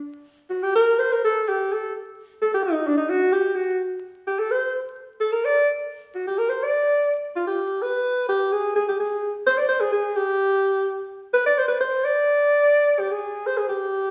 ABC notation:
X:1
M:2/4
L:1/16
Q:1/4=127
K:none
V:1 name="Alto saxophone"
z4 ^F G _B2 | c _B A2 G2 A2 | z4 A G _E2 | D _E ^F2 G2 F2 |
z4 G A c2 | z4 A _B d2 | z4 ^F G _B c | d4 z2 F G- |
G2 B4 G2 | _A2 A G A3 z | c d c _A A2 G2- | G6 z2 |
B d c B c2 d2- | d6 G _A- | _A2 c A G4 |]